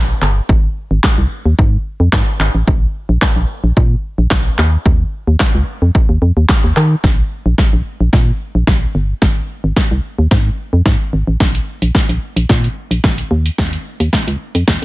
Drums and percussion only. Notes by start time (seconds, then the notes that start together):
0.22 clap
0.49 kick
1.04 kick, snare, clap
1.59 kick
2.13 kick, snare, clap
2.40 clap
2.68 kick
3.22 kick, snare, clap
3.77 kick
4.31 kick, snare, clap
4.58 clap
4.86 kick
5.40 kick, snare, clap
5.95 kick
6.49 kick, snare, clap
6.77 clap
7.04 kick, snare
7.58 kick, snare
8.13 kick, snare
8.67 kick, snare
9.22 kick, snare
9.76 kick, snare
10.31 kick, snare
10.86 kick, snare
11.40 kick, snare
11.55 closed hi-hat
11.82 closed hi-hat
11.95 kick, snare
12.09 closed hi-hat
12.37 closed hi-hat
12.49 kick, snare
12.64 closed hi-hat
12.91 closed hi-hat
13.04 kick, snare
13.18 closed hi-hat
13.46 closed hi-hat
13.58 kick, snare
13.73 closed hi-hat
14.00 closed hi-hat
14.13 kick, snare
14.28 closed hi-hat
14.55 closed hi-hat
14.68 kick, snare